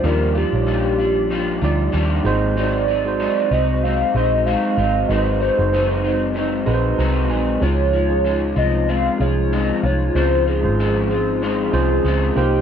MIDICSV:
0, 0, Header, 1, 6, 480
1, 0, Start_track
1, 0, Tempo, 631512
1, 35, Time_signature, 4, 2, 24, 8
1, 9588, End_track
2, 0, Start_track
2, 0, Title_t, "Soft synth lead"
2, 0, Program_c, 0, 80
2, 40, Note_on_c, 0, 70, 102
2, 283, Note_on_c, 0, 67, 97
2, 294, Note_off_c, 0, 70, 0
2, 1719, Note_off_c, 0, 67, 0
2, 1968, Note_on_c, 0, 74, 105
2, 2677, Note_on_c, 0, 75, 102
2, 2688, Note_off_c, 0, 74, 0
2, 2913, Note_on_c, 0, 77, 113
2, 2925, Note_off_c, 0, 75, 0
2, 3154, Note_off_c, 0, 77, 0
2, 3163, Note_on_c, 0, 75, 96
2, 3389, Note_on_c, 0, 77, 113
2, 3400, Note_off_c, 0, 75, 0
2, 3864, Note_on_c, 0, 75, 109
2, 3875, Note_off_c, 0, 77, 0
2, 4115, Note_on_c, 0, 72, 89
2, 4126, Note_off_c, 0, 75, 0
2, 4835, Note_off_c, 0, 72, 0
2, 5798, Note_on_c, 0, 73, 118
2, 6486, Note_off_c, 0, 73, 0
2, 6520, Note_on_c, 0, 75, 114
2, 6761, Note_on_c, 0, 77, 114
2, 6773, Note_off_c, 0, 75, 0
2, 7003, Note_on_c, 0, 73, 96
2, 7014, Note_off_c, 0, 77, 0
2, 7250, Note_on_c, 0, 75, 109
2, 7261, Note_off_c, 0, 73, 0
2, 7489, Note_on_c, 0, 73, 105
2, 7500, Note_off_c, 0, 75, 0
2, 7716, Note_off_c, 0, 73, 0
2, 7721, Note_on_c, 0, 72, 110
2, 7941, Note_off_c, 0, 72, 0
2, 7975, Note_on_c, 0, 68, 109
2, 9414, Note_on_c, 0, 67, 101
2, 9426, Note_off_c, 0, 68, 0
2, 9588, Note_off_c, 0, 67, 0
2, 9588, End_track
3, 0, Start_track
3, 0, Title_t, "Tine electric piano"
3, 0, Program_c, 1, 4
3, 0, Control_c, 1, 64, 127
3, 0, Note_on_c, 1, 55, 70
3, 0, Note_on_c, 1, 63, 71
3, 0, Note_on_c, 1, 65, 67
3, 0, Note_on_c, 1, 72, 82
3, 0, Note_on_c, 1, 77, 83
3, 27, Note_off_c, 1, 55, 0
3, 27, Note_on_c, 1, 55, 76
3, 31, Note_off_c, 1, 63, 0
3, 31, Note_on_c, 1, 63, 68
3, 36, Note_off_c, 1, 65, 0
3, 36, Note_on_c, 1, 65, 63
3, 48, Note_on_c, 1, 74, 79
3, 377, Note_off_c, 1, 55, 0
3, 379, Note_off_c, 1, 63, 0
3, 381, Note_off_c, 1, 65, 0
3, 387, Note_off_c, 1, 74, 0
3, 398, Note_on_c, 1, 55, 66
3, 404, Note_on_c, 1, 63, 67
3, 409, Note_on_c, 1, 65, 68
3, 418, Note_on_c, 1, 73, 68
3, 457, Note_off_c, 1, 73, 0
3, 469, Note_on_c, 1, 74, 76
3, 1181, Note_off_c, 1, 55, 0
3, 1183, Note_off_c, 1, 63, 0
3, 1186, Note_off_c, 1, 65, 0
3, 1216, Note_off_c, 1, 74, 0
3, 1229, Note_on_c, 1, 55, 91
3, 1235, Note_on_c, 1, 63, 81
3, 1243, Note_on_c, 1, 65, 77
3, 1251, Note_on_c, 1, 74, 102
3, 1700, Note_off_c, 1, 63, 0
3, 1705, Note_on_c, 1, 56, 97
3, 1709, Note_on_c, 1, 63, 85
3, 1712, Note_off_c, 1, 55, 0
3, 1716, Note_on_c, 1, 66, 86
3, 1719, Note_off_c, 1, 65, 0
3, 1721, Note_off_c, 1, 72, 0
3, 1721, Note_on_c, 1, 72, 112
3, 1723, Note_off_c, 1, 74, 0
3, 1723, Note_off_c, 1, 77, 0
3, 1723, Control_c, 1, 64, 0
3, 1841, Control_c, 1, 64, 127
3, 2278, Note_off_c, 1, 56, 0
3, 2280, Note_off_c, 1, 63, 0
3, 2284, Note_off_c, 1, 66, 0
3, 2286, Note_off_c, 1, 72, 0
3, 2318, Note_on_c, 1, 56, 74
3, 2327, Note_on_c, 1, 66, 64
3, 2328, Note_on_c, 1, 63, 68
3, 2341, Note_on_c, 1, 72, 86
3, 3100, Note_off_c, 1, 56, 0
3, 3105, Note_off_c, 1, 63, 0
3, 3105, Note_off_c, 1, 66, 0
3, 3112, Note_off_c, 1, 72, 0
3, 3150, Note_on_c, 1, 56, 75
3, 3160, Note_on_c, 1, 63, 69
3, 3162, Note_on_c, 1, 66, 66
3, 3168, Note_on_c, 1, 72, 78
3, 3830, Note_off_c, 1, 56, 0
3, 3835, Note_off_c, 1, 63, 0
3, 3835, Note_off_c, 1, 66, 0
3, 3838, Note_off_c, 1, 72, 0
3, 3866, Note_on_c, 1, 56, 75
3, 3868, Note_on_c, 1, 63, 65
3, 3876, Note_on_c, 1, 66, 69
3, 3879, Note_on_c, 1, 71, 67
3, 3931, Note_off_c, 1, 71, 0
3, 3933, Note_on_c, 1, 72, 81
3, 4216, Note_off_c, 1, 56, 0
3, 4217, Note_off_c, 1, 63, 0
3, 4221, Note_off_c, 1, 66, 0
3, 4238, Note_on_c, 1, 56, 71
3, 4246, Note_on_c, 1, 63, 70
3, 4246, Note_on_c, 1, 66, 68
3, 4247, Note_off_c, 1, 72, 0
3, 4256, Note_on_c, 1, 72, 84
3, 5020, Note_off_c, 1, 56, 0
3, 5024, Note_off_c, 1, 63, 0
3, 5024, Note_off_c, 1, 66, 0
3, 5029, Note_off_c, 1, 72, 0
3, 5060, Note_on_c, 1, 56, 84
3, 5064, Note_on_c, 1, 63, 75
3, 5072, Note_on_c, 1, 66, 79
3, 5074, Note_on_c, 1, 71, 78
3, 5125, Note_on_c, 1, 72, 97
3, 5129, Note_off_c, 1, 71, 0
3, 5308, Note_on_c, 1, 82, 75
3, 5534, Note_off_c, 1, 82, 0
3, 5552, Note_on_c, 1, 80, 71
3, 5745, Note_off_c, 1, 56, 0
3, 5746, Note_off_c, 1, 63, 0
3, 5751, Note_off_c, 1, 66, 0
3, 5776, Note_off_c, 1, 80, 0
3, 5777, Note_off_c, 1, 72, 0
3, 5777, Note_on_c, 1, 56, 69
3, 5785, Note_on_c, 1, 61, 68
3, 5792, Note_on_c, 1, 65, 62
3, 5799, Note_on_c, 1, 73, 74
3, 5804, Control_c, 1, 64, 0
3, 5958, Control_c, 1, 64, 127
3, 6131, Note_off_c, 1, 56, 0
3, 6136, Note_off_c, 1, 61, 0
3, 6139, Note_off_c, 1, 65, 0
3, 6142, Note_off_c, 1, 73, 0
3, 6148, Note_on_c, 1, 56, 73
3, 6157, Note_on_c, 1, 61, 68
3, 6162, Note_on_c, 1, 65, 65
3, 6171, Note_on_c, 1, 68, 83
3, 6935, Note_off_c, 1, 56, 0
3, 6940, Note_off_c, 1, 61, 0
3, 6942, Note_off_c, 1, 65, 0
3, 6947, Note_off_c, 1, 68, 0
3, 6977, Note_on_c, 1, 56, 71
3, 6985, Note_on_c, 1, 61, 65
3, 6994, Note_on_c, 1, 65, 70
3, 7001, Note_on_c, 1, 68, 78
3, 7663, Note_off_c, 1, 56, 0
3, 7666, Note_off_c, 1, 61, 0
3, 7671, Note_off_c, 1, 65, 0
3, 7674, Note_off_c, 1, 68, 0
3, 7716, Note_on_c, 1, 61, 68
3, 7717, Note_on_c, 1, 56, 67
3, 7725, Note_on_c, 1, 64, 53
3, 7735, Note_on_c, 1, 72, 84
3, 7772, Note_on_c, 1, 65, 66
3, 7774, Note_off_c, 1, 64, 0
3, 8061, Note_off_c, 1, 56, 0
3, 8061, Note_off_c, 1, 61, 0
3, 8071, Note_off_c, 1, 72, 0
3, 8073, Note_off_c, 1, 65, 0
3, 8073, Note_on_c, 1, 56, 71
3, 8078, Note_on_c, 1, 61, 65
3, 8082, Note_on_c, 1, 65, 64
3, 8088, Note_on_c, 1, 72, 75
3, 8857, Note_off_c, 1, 56, 0
3, 8860, Note_off_c, 1, 61, 0
3, 8862, Note_off_c, 1, 65, 0
3, 8865, Note_off_c, 1, 72, 0
3, 8905, Note_on_c, 1, 56, 84
3, 8913, Note_on_c, 1, 61, 84
3, 8919, Note_on_c, 1, 65, 81
3, 8922, Note_on_c, 1, 72, 99
3, 9389, Note_off_c, 1, 56, 0
3, 9391, Note_on_c, 1, 58, 87
3, 9394, Note_off_c, 1, 61, 0
3, 9396, Note_off_c, 1, 65, 0
3, 9397, Note_on_c, 1, 63, 74
3, 9398, Note_off_c, 1, 72, 0
3, 9402, Note_on_c, 1, 67, 75
3, 9405, Control_c, 1, 64, 0
3, 9407, Note_on_c, 1, 72, 91
3, 9554, Control_c, 1, 64, 127
3, 9588, Note_off_c, 1, 58, 0
3, 9588, Note_off_c, 1, 63, 0
3, 9588, Note_off_c, 1, 67, 0
3, 9588, Note_off_c, 1, 72, 0
3, 9588, End_track
4, 0, Start_track
4, 0, Title_t, "Analog synth pad"
4, 0, Program_c, 2, 89
4, 0, Note_on_c, 2, 53, 75
4, 0, Note_on_c, 2, 58, 70
4, 0, Note_on_c, 2, 65, 77
4, 0, Note_on_c, 2, 67, 83
4, 1687, Note_off_c, 2, 67, 0
4, 1688, Note_off_c, 2, 53, 0
4, 1688, Note_off_c, 2, 58, 0
4, 1689, Note_off_c, 2, 65, 0
4, 1710, Note_on_c, 2, 56, 83
4, 1715, Note_on_c, 2, 63, 72
4, 1715, Note_on_c, 2, 66, 86
4, 5762, Note_off_c, 2, 56, 0
4, 5764, Note_off_c, 2, 66, 0
4, 5794, Note_on_c, 2, 65, 83
4, 5798, Note_on_c, 2, 53, 80
4, 9363, Note_off_c, 2, 65, 0
4, 9364, Note_off_c, 2, 63, 0
4, 9365, Note_off_c, 2, 53, 0
4, 9396, Note_on_c, 2, 63, 93
4, 9397, Note_on_c, 2, 58, 72
4, 9399, Note_on_c, 2, 48, 82
4, 9588, Note_off_c, 2, 48, 0
4, 9588, Note_off_c, 2, 58, 0
4, 9588, Note_off_c, 2, 63, 0
4, 9588, End_track
5, 0, Start_track
5, 0, Title_t, "Clean electric guitar"
5, 0, Program_c, 3, 27
5, 28, Note_on_c, 3, 51, 73
5, 31, Note_on_c, 3, 55, 79
5, 37, Note_on_c, 3, 62, 86
5, 41, Note_on_c, 3, 65, 85
5, 254, Note_off_c, 3, 65, 0
5, 264, Note_on_c, 3, 65, 59
5, 265, Note_off_c, 3, 62, 0
5, 270, Note_off_c, 3, 55, 0
5, 272, Note_off_c, 3, 51, 0
5, 274, Note_on_c, 3, 62, 53
5, 279, Note_on_c, 3, 55, 46
5, 498, Note_off_c, 3, 55, 0
5, 505, Note_off_c, 3, 62, 0
5, 506, Note_on_c, 3, 51, 73
5, 507, Note_on_c, 3, 55, 76
5, 509, Note_off_c, 3, 65, 0
5, 514, Note_on_c, 3, 62, 88
5, 519, Note_on_c, 3, 65, 84
5, 740, Note_off_c, 3, 65, 0
5, 748, Note_off_c, 3, 62, 0
5, 750, Note_off_c, 3, 51, 0
5, 750, Note_on_c, 3, 65, 53
5, 751, Note_off_c, 3, 55, 0
5, 757, Note_on_c, 3, 62, 51
5, 764, Note_on_c, 3, 55, 46
5, 984, Note_off_c, 3, 55, 0
5, 990, Note_on_c, 3, 51, 66
5, 992, Note_off_c, 3, 62, 0
5, 992, Note_off_c, 3, 65, 0
5, 993, Note_on_c, 3, 55, 68
5, 1001, Note_on_c, 3, 62, 68
5, 1007, Note_on_c, 3, 65, 68
5, 1219, Note_off_c, 3, 65, 0
5, 1228, Note_on_c, 3, 65, 61
5, 1229, Note_off_c, 3, 62, 0
5, 1232, Note_off_c, 3, 51, 0
5, 1234, Note_off_c, 3, 55, 0
5, 1238, Note_on_c, 3, 62, 56
5, 1245, Note_on_c, 3, 55, 49
5, 1454, Note_off_c, 3, 55, 0
5, 1460, Note_on_c, 3, 51, 76
5, 1461, Note_off_c, 3, 62, 0
5, 1463, Note_off_c, 3, 65, 0
5, 1464, Note_on_c, 3, 55, 93
5, 1470, Note_on_c, 3, 62, 102
5, 1472, Note_on_c, 3, 65, 89
5, 1704, Note_off_c, 3, 65, 0
5, 1707, Note_on_c, 3, 63, 64
5, 1708, Note_off_c, 3, 51, 0
5, 1709, Note_off_c, 3, 55, 0
5, 1712, Note_off_c, 3, 62, 0
5, 1718, Note_on_c, 3, 60, 50
5, 1722, Note_on_c, 3, 54, 52
5, 1943, Note_off_c, 3, 54, 0
5, 1943, Note_on_c, 3, 44, 72
5, 1944, Note_off_c, 3, 60, 0
5, 1947, Note_off_c, 3, 63, 0
5, 1953, Note_on_c, 3, 54, 77
5, 1953, Note_on_c, 3, 60, 80
5, 1957, Note_on_c, 3, 63, 86
5, 2181, Note_off_c, 3, 63, 0
5, 2189, Note_off_c, 3, 44, 0
5, 2189, Note_off_c, 3, 60, 0
5, 2190, Note_on_c, 3, 63, 57
5, 2194, Note_off_c, 3, 54, 0
5, 2199, Note_on_c, 3, 60, 54
5, 2207, Note_on_c, 3, 54, 47
5, 2421, Note_off_c, 3, 54, 0
5, 2427, Note_off_c, 3, 60, 0
5, 2430, Note_on_c, 3, 44, 76
5, 2431, Note_on_c, 3, 54, 81
5, 2432, Note_off_c, 3, 63, 0
5, 2436, Note_on_c, 3, 60, 76
5, 2442, Note_on_c, 3, 63, 91
5, 2660, Note_off_c, 3, 63, 0
5, 2669, Note_on_c, 3, 63, 55
5, 2671, Note_off_c, 3, 60, 0
5, 2672, Note_off_c, 3, 44, 0
5, 2673, Note_off_c, 3, 54, 0
5, 2680, Note_on_c, 3, 60, 52
5, 2688, Note_on_c, 3, 54, 48
5, 2912, Note_off_c, 3, 63, 0
5, 2915, Note_off_c, 3, 54, 0
5, 2917, Note_off_c, 3, 60, 0
5, 2917, Note_on_c, 3, 44, 60
5, 2924, Note_on_c, 3, 54, 58
5, 2929, Note_on_c, 3, 60, 62
5, 2933, Note_on_c, 3, 63, 68
5, 3148, Note_off_c, 3, 63, 0
5, 3156, Note_off_c, 3, 44, 0
5, 3157, Note_on_c, 3, 63, 59
5, 3159, Note_off_c, 3, 54, 0
5, 3162, Note_off_c, 3, 60, 0
5, 3170, Note_on_c, 3, 60, 57
5, 3175, Note_on_c, 3, 54, 48
5, 3389, Note_off_c, 3, 54, 0
5, 3390, Note_off_c, 3, 60, 0
5, 3391, Note_on_c, 3, 44, 81
5, 3393, Note_off_c, 3, 63, 0
5, 3398, Note_on_c, 3, 54, 78
5, 3399, Note_on_c, 3, 60, 75
5, 3402, Note_on_c, 3, 63, 81
5, 3623, Note_off_c, 3, 63, 0
5, 3631, Note_off_c, 3, 60, 0
5, 3632, Note_on_c, 3, 63, 52
5, 3633, Note_off_c, 3, 44, 0
5, 3636, Note_off_c, 3, 54, 0
5, 3640, Note_on_c, 3, 60, 47
5, 3645, Note_on_c, 3, 54, 43
5, 3869, Note_off_c, 3, 54, 0
5, 3870, Note_on_c, 3, 44, 66
5, 3873, Note_off_c, 3, 63, 0
5, 3874, Note_off_c, 3, 60, 0
5, 3878, Note_on_c, 3, 54, 73
5, 3883, Note_on_c, 3, 60, 79
5, 3884, Note_on_c, 3, 63, 80
5, 4096, Note_off_c, 3, 63, 0
5, 4105, Note_off_c, 3, 60, 0
5, 4105, Note_on_c, 3, 63, 54
5, 4112, Note_off_c, 3, 44, 0
5, 4114, Note_on_c, 3, 60, 53
5, 4116, Note_off_c, 3, 54, 0
5, 4124, Note_on_c, 3, 54, 46
5, 4350, Note_off_c, 3, 54, 0
5, 4350, Note_off_c, 3, 63, 0
5, 4354, Note_off_c, 3, 60, 0
5, 4354, Note_on_c, 3, 44, 79
5, 4359, Note_on_c, 3, 54, 83
5, 4364, Note_on_c, 3, 60, 83
5, 4368, Note_on_c, 3, 63, 81
5, 4583, Note_off_c, 3, 63, 0
5, 4592, Note_off_c, 3, 60, 0
5, 4592, Note_on_c, 3, 63, 59
5, 4594, Note_off_c, 3, 44, 0
5, 4597, Note_off_c, 3, 54, 0
5, 4601, Note_on_c, 3, 60, 47
5, 4606, Note_on_c, 3, 54, 45
5, 4817, Note_off_c, 3, 54, 0
5, 4821, Note_on_c, 3, 44, 72
5, 4824, Note_off_c, 3, 60, 0
5, 4826, Note_on_c, 3, 54, 65
5, 4830, Note_off_c, 3, 63, 0
5, 4833, Note_on_c, 3, 60, 70
5, 4839, Note_on_c, 3, 63, 65
5, 5055, Note_off_c, 3, 63, 0
5, 5064, Note_on_c, 3, 63, 65
5, 5068, Note_off_c, 3, 44, 0
5, 5068, Note_off_c, 3, 60, 0
5, 5070, Note_off_c, 3, 54, 0
5, 5078, Note_on_c, 3, 60, 60
5, 5082, Note_on_c, 3, 54, 55
5, 5309, Note_off_c, 3, 63, 0
5, 5310, Note_off_c, 3, 54, 0
5, 5312, Note_on_c, 3, 44, 92
5, 5313, Note_off_c, 3, 60, 0
5, 5319, Note_on_c, 3, 54, 91
5, 5322, Note_on_c, 3, 60, 97
5, 5325, Note_on_c, 3, 63, 92
5, 5538, Note_off_c, 3, 63, 0
5, 5545, Note_off_c, 3, 60, 0
5, 5547, Note_on_c, 3, 63, 64
5, 5553, Note_off_c, 3, 44, 0
5, 5554, Note_off_c, 3, 54, 0
5, 5554, Note_on_c, 3, 60, 60
5, 5563, Note_on_c, 3, 54, 52
5, 5787, Note_on_c, 3, 49, 82
5, 5790, Note_off_c, 3, 54, 0
5, 5791, Note_off_c, 3, 63, 0
5, 5793, Note_on_c, 3, 56, 76
5, 5794, Note_off_c, 3, 60, 0
5, 5799, Note_on_c, 3, 65, 83
5, 6020, Note_off_c, 3, 65, 0
5, 6029, Note_on_c, 3, 65, 60
5, 6031, Note_off_c, 3, 49, 0
5, 6034, Note_off_c, 3, 56, 0
5, 6045, Note_on_c, 3, 56, 48
5, 6268, Note_off_c, 3, 56, 0
5, 6269, Note_on_c, 3, 49, 86
5, 6272, Note_off_c, 3, 65, 0
5, 6277, Note_on_c, 3, 56, 86
5, 6282, Note_on_c, 3, 65, 77
5, 6499, Note_off_c, 3, 65, 0
5, 6508, Note_on_c, 3, 65, 61
5, 6512, Note_off_c, 3, 49, 0
5, 6516, Note_off_c, 3, 56, 0
5, 6516, Note_on_c, 3, 60, 55
5, 6528, Note_on_c, 3, 56, 43
5, 6746, Note_off_c, 3, 56, 0
5, 6751, Note_off_c, 3, 65, 0
5, 6752, Note_off_c, 3, 60, 0
5, 6755, Note_on_c, 3, 56, 55
5, 6761, Note_on_c, 3, 60, 66
5, 6766, Note_on_c, 3, 65, 69
5, 6987, Note_off_c, 3, 65, 0
5, 6995, Note_off_c, 3, 56, 0
5, 6996, Note_on_c, 3, 65, 60
5, 6998, Note_off_c, 3, 60, 0
5, 7012, Note_on_c, 3, 56, 44
5, 7231, Note_off_c, 3, 56, 0
5, 7235, Note_off_c, 3, 65, 0
5, 7240, Note_on_c, 3, 56, 78
5, 7241, Note_on_c, 3, 60, 83
5, 7244, Note_on_c, 3, 65, 88
5, 7463, Note_off_c, 3, 65, 0
5, 7473, Note_on_c, 3, 65, 53
5, 7477, Note_off_c, 3, 56, 0
5, 7478, Note_off_c, 3, 60, 0
5, 7493, Note_on_c, 3, 56, 45
5, 7712, Note_off_c, 3, 56, 0
5, 7713, Note_off_c, 3, 65, 0
5, 7717, Note_on_c, 3, 49, 73
5, 7722, Note_on_c, 3, 56, 74
5, 7724, Note_on_c, 3, 60, 74
5, 7728, Note_on_c, 3, 65, 83
5, 7942, Note_off_c, 3, 65, 0
5, 7952, Note_on_c, 3, 65, 55
5, 7953, Note_off_c, 3, 60, 0
5, 7956, Note_off_c, 3, 49, 0
5, 7958, Note_off_c, 3, 56, 0
5, 7963, Note_on_c, 3, 60, 51
5, 7968, Note_on_c, 3, 56, 44
5, 8193, Note_off_c, 3, 65, 0
5, 8198, Note_off_c, 3, 60, 0
5, 8199, Note_off_c, 3, 56, 0
5, 8204, Note_on_c, 3, 49, 77
5, 8208, Note_on_c, 3, 56, 88
5, 8211, Note_on_c, 3, 60, 86
5, 8211, Note_on_c, 3, 65, 83
5, 8424, Note_off_c, 3, 65, 0
5, 8432, Note_off_c, 3, 60, 0
5, 8433, Note_on_c, 3, 65, 57
5, 8437, Note_off_c, 3, 56, 0
5, 8439, Note_off_c, 3, 49, 0
5, 8441, Note_on_c, 3, 60, 51
5, 8446, Note_on_c, 3, 56, 45
5, 8674, Note_off_c, 3, 65, 0
5, 8675, Note_off_c, 3, 56, 0
5, 8678, Note_off_c, 3, 60, 0
5, 8680, Note_on_c, 3, 49, 68
5, 8685, Note_on_c, 3, 56, 70
5, 8686, Note_on_c, 3, 60, 69
5, 8694, Note_on_c, 3, 65, 80
5, 8908, Note_off_c, 3, 65, 0
5, 8915, Note_off_c, 3, 60, 0
5, 8917, Note_off_c, 3, 49, 0
5, 8917, Note_on_c, 3, 65, 69
5, 8919, Note_off_c, 3, 56, 0
5, 8924, Note_on_c, 3, 60, 53
5, 8932, Note_on_c, 3, 56, 53
5, 9154, Note_off_c, 3, 56, 0
5, 9156, Note_off_c, 3, 65, 0
5, 9157, Note_off_c, 3, 60, 0
5, 9158, Note_on_c, 3, 49, 89
5, 9163, Note_on_c, 3, 56, 86
5, 9166, Note_on_c, 3, 60, 88
5, 9171, Note_on_c, 3, 65, 103
5, 9396, Note_off_c, 3, 49, 0
5, 9398, Note_off_c, 3, 56, 0
5, 9399, Note_on_c, 3, 67, 56
5, 9400, Note_off_c, 3, 60, 0
5, 9402, Note_off_c, 3, 65, 0
5, 9409, Note_on_c, 3, 63, 45
5, 9414, Note_on_c, 3, 58, 44
5, 9588, Note_off_c, 3, 58, 0
5, 9588, Note_off_c, 3, 63, 0
5, 9588, Note_off_c, 3, 67, 0
5, 9588, End_track
6, 0, Start_track
6, 0, Title_t, "Picked electric bass"
6, 0, Program_c, 4, 34
6, 29, Note_on_c, 4, 39, 95
6, 329, Note_off_c, 4, 39, 0
6, 403, Note_on_c, 4, 34, 89
6, 1202, Note_off_c, 4, 34, 0
6, 1233, Note_on_c, 4, 38, 93
6, 1426, Note_off_c, 4, 38, 0
6, 1472, Note_on_c, 4, 39, 89
6, 1665, Note_off_c, 4, 39, 0
6, 1708, Note_on_c, 4, 32, 91
6, 2479, Note_off_c, 4, 32, 0
6, 2670, Note_on_c, 4, 36, 90
6, 3056, Note_off_c, 4, 36, 0
6, 3152, Note_on_c, 4, 34, 92
6, 3450, Note_off_c, 4, 34, 0
6, 3631, Note_on_c, 4, 32, 98
6, 3824, Note_off_c, 4, 32, 0
6, 3872, Note_on_c, 4, 32, 104
6, 4171, Note_off_c, 4, 32, 0
6, 4246, Note_on_c, 4, 30, 84
6, 5044, Note_off_c, 4, 30, 0
6, 5072, Note_on_c, 4, 34, 95
6, 5265, Note_off_c, 4, 34, 0
6, 5311, Note_on_c, 4, 36, 93
6, 5550, Note_off_c, 4, 36, 0
6, 5550, Note_on_c, 4, 34, 92
6, 5744, Note_off_c, 4, 34, 0
6, 5791, Note_on_c, 4, 37, 105
6, 6482, Note_off_c, 4, 37, 0
6, 6511, Note_on_c, 4, 36, 88
6, 6896, Note_off_c, 4, 36, 0
6, 6995, Note_on_c, 4, 36, 91
6, 7379, Note_off_c, 4, 36, 0
6, 7475, Note_on_c, 4, 36, 94
6, 7667, Note_off_c, 4, 36, 0
6, 7715, Note_on_c, 4, 37, 96
6, 8089, Note_on_c, 4, 32, 83
6, 8101, Note_off_c, 4, 37, 0
6, 8885, Note_off_c, 4, 32, 0
6, 8919, Note_on_c, 4, 36, 89
6, 9109, Note_off_c, 4, 36, 0
6, 9153, Note_on_c, 4, 37, 91
6, 9346, Note_off_c, 4, 37, 0
6, 9398, Note_on_c, 4, 36, 100
6, 9588, Note_off_c, 4, 36, 0
6, 9588, End_track
0, 0, End_of_file